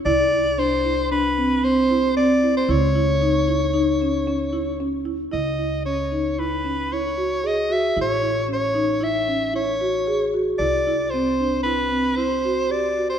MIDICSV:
0, 0, Header, 1, 4, 480
1, 0, Start_track
1, 0, Tempo, 527241
1, 48, Time_signature, 5, 2, 24, 8
1, 12007, End_track
2, 0, Start_track
2, 0, Title_t, "Soprano saxophone"
2, 0, Program_c, 0, 64
2, 51, Note_on_c, 0, 74, 85
2, 533, Note_on_c, 0, 72, 81
2, 546, Note_off_c, 0, 74, 0
2, 1009, Note_off_c, 0, 72, 0
2, 1015, Note_on_c, 0, 71, 75
2, 1494, Note_on_c, 0, 72, 84
2, 1507, Note_off_c, 0, 71, 0
2, 1967, Note_off_c, 0, 72, 0
2, 1973, Note_on_c, 0, 74, 79
2, 2307, Note_off_c, 0, 74, 0
2, 2339, Note_on_c, 0, 72, 66
2, 2465, Note_on_c, 0, 73, 76
2, 2479, Note_off_c, 0, 72, 0
2, 4377, Note_off_c, 0, 73, 0
2, 4848, Note_on_c, 0, 75, 61
2, 5295, Note_off_c, 0, 75, 0
2, 5331, Note_on_c, 0, 73, 59
2, 5820, Note_on_c, 0, 71, 61
2, 5834, Note_off_c, 0, 73, 0
2, 6307, Note_on_c, 0, 73, 64
2, 6320, Note_off_c, 0, 71, 0
2, 6797, Note_on_c, 0, 75, 69
2, 6811, Note_off_c, 0, 73, 0
2, 7029, Note_on_c, 0, 76, 69
2, 7043, Note_off_c, 0, 75, 0
2, 7259, Note_off_c, 0, 76, 0
2, 7292, Note_on_c, 0, 73, 74
2, 7718, Note_off_c, 0, 73, 0
2, 7764, Note_on_c, 0, 73, 67
2, 8223, Note_on_c, 0, 76, 75
2, 8237, Note_off_c, 0, 73, 0
2, 8696, Note_off_c, 0, 76, 0
2, 8701, Note_on_c, 0, 73, 63
2, 9378, Note_off_c, 0, 73, 0
2, 9635, Note_on_c, 0, 74, 75
2, 10104, Note_on_c, 0, 72, 69
2, 10117, Note_off_c, 0, 74, 0
2, 10585, Note_off_c, 0, 72, 0
2, 10590, Note_on_c, 0, 71, 70
2, 11071, Note_on_c, 0, 72, 72
2, 11084, Note_off_c, 0, 71, 0
2, 11570, Note_on_c, 0, 74, 70
2, 11583, Note_off_c, 0, 72, 0
2, 11916, Note_off_c, 0, 74, 0
2, 11922, Note_on_c, 0, 72, 63
2, 12007, Note_off_c, 0, 72, 0
2, 12007, End_track
3, 0, Start_track
3, 0, Title_t, "Marimba"
3, 0, Program_c, 1, 12
3, 55, Note_on_c, 1, 64, 74
3, 241, Note_off_c, 1, 64, 0
3, 292, Note_on_c, 1, 64, 56
3, 479, Note_off_c, 1, 64, 0
3, 529, Note_on_c, 1, 62, 59
3, 717, Note_off_c, 1, 62, 0
3, 773, Note_on_c, 1, 64, 58
3, 960, Note_off_c, 1, 64, 0
3, 1015, Note_on_c, 1, 62, 64
3, 1201, Note_off_c, 1, 62, 0
3, 1256, Note_on_c, 1, 60, 62
3, 1442, Note_off_c, 1, 60, 0
3, 1494, Note_on_c, 1, 60, 69
3, 1681, Note_off_c, 1, 60, 0
3, 1736, Note_on_c, 1, 64, 62
3, 1922, Note_off_c, 1, 64, 0
3, 1975, Note_on_c, 1, 60, 65
3, 2161, Note_off_c, 1, 60, 0
3, 2212, Note_on_c, 1, 64, 60
3, 2400, Note_off_c, 1, 64, 0
3, 2448, Note_on_c, 1, 64, 74
3, 2637, Note_off_c, 1, 64, 0
3, 2689, Note_on_c, 1, 64, 59
3, 2877, Note_off_c, 1, 64, 0
3, 2928, Note_on_c, 1, 63, 62
3, 3117, Note_off_c, 1, 63, 0
3, 3164, Note_on_c, 1, 64, 59
3, 3354, Note_off_c, 1, 64, 0
3, 3401, Note_on_c, 1, 63, 62
3, 3592, Note_off_c, 1, 63, 0
3, 3657, Note_on_c, 1, 61, 60
3, 3842, Note_off_c, 1, 61, 0
3, 3889, Note_on_c, 1, 61, 64
3, 4077, Note_off_c, 1, 61, 0
3, 4122, Note_on_c, 1, 64, 59
3, 4313, Note_off_c, 1, 64, 0
3, 4371, Note_on_c, 1, 61, 63
3, 4558, Note_off_c, 1, 61, 0
3, 4603, Note_on_c, 1, 64, 58
3, 4793, Note_off_c, 1, 64, 0
3, 4838, Note_on_c, 1, 64, 64
3, 5030, Note_off_c, 1, 64, 0
3, 5086, Note_on_c, 1, 64, 49
3, 5275, Note_off_c, 1, 64, 0
3, 5333, Note_on_c, 1, 61, 52
3, 5519, Note_off_c, 1, 61, 0
3, 5571, Note_on_c, 1, 63, 52
3, 5758, Note_off_c, 1, 63, 0
3, 5814, Note_on_c, 1, 64, 56
3, 6000, Note_off_c, 1, 64, 0
3, 6047, Note_on_c, 1, 61, 53
3, 6235, Note_off_c, 1, 61, 0
3, 6302, Note_on_c, 1, 64, 56
3, 6484, Note_off_c, 1, 64, 0
3, 6531, Note_on_c, 1, 66, 52
3, 6718, Note_off_c, 1, 66, 0
3, 6772, Note_on_c, 1, 68, 56
3, 6958, Note_off_c, 1, 68, 0
3, 7012, Note_on_c, 1, 66, 55
3, 7198, Note_off_c, 1, 66, 0
3, 7255, Note_on_c, 1, 64, 63
3, 7440, Note_off_c, 1, 64, 0
3, 7484, Note_on_c, 1, 64, 51
3, 7673, Note_off_c, 1, 64, 0
3, 7720, Note_on_c, 1, 61, 52
3, 7911, Note_off_c, 1, 61, 0
3, 7963, Note_on_c, 1, 63, 54
3, 8152, Note_off_c, 1, 63, 0
3, 8199, Note_on_c, 1, 64, 58
3, 8390, Note_off_c, 1, 64, 0
3, 8447, Note_on_c, 1, 61, 59
3, 8635, Note_off_c, 1, 61, 0
3, 8681, Note_on_c, 1, 64, 59
3, 8871, Note_off_c, 1, 64, 0
3, 8931, Note_on_c, 1, 66, 54
3, 9118, Note_off_c, 1, 66, 0
3, 9171, Note_on_c, 1, 68, 62
3, 9358, Note_off_c, 1, 68, 0
3, 9415, Note_on_c, 1, 66, 56
3, 9600, Note_off_c, 1, 66, 0
3, 9656, Note_on_c, 1, 64, 61
3, 9841, Note_off_c, 1, 64, 0
3, 9897, Note_on_c, 1, 64, 55
3, 10081, Note_off_c, 1, 64, 0
3, 10140, Note_on_c, 1, 60, 54
3, 10323, Note_off_c, 1, 60, 0
3, 10378, Note_on_c, 1, 62, 57
3, 10561, Note_off_c, 1, 62, 0
3, 10609, Note_on_c, 1, 64, 56
3, 10796, Note_off_c, 1, 64, 0
3, 10846, Note_on_c, 1, 60, 54
3, 11034, Note_off_c, 1, 60, 0
3, 11084, Note_on_c, 1, 64, 58
3, 11273, Note_off_c, 1, 64, 0
3, 11332, Note_on_c, 1, 66, 54
3, 11518, Note_off_c, 1, 66, 0
3, 11561, Note_on_c, 1, 67, 58
3, 11751, Note_off_c, 1, 67, 0
3, 11809, Note_on_c, 1, 66, 51
3, 11996, Note_off_c, 1, 66, 0
3, 12007, End_track
4, 0, Start_track
4, 0, Title_t, "Upright bass"
4, 0, Program_c, 2, 32
4, 49, Note_on_c, 2, 36, 65
4, 2416, Note_off_c, 2, 36, 0
4, 2446, Note_on_c, 2, 37, 68
4, 4811, Note_off_c, 2, 37, 0
4, 4854, Note_on_c, 2, 37, 51
4, 7215, Note_off_c, 2, 37, 0
4, 7252, Note_on_c, 2, 33, 59
4, 9613, Note_off_c, 2, 33, 0
4, 9645, Note_on_c, 2, 36, 55
4, 12007, Note_off_c, 2, 36, 0
4, 12007, End_track
0, 0, End_of_file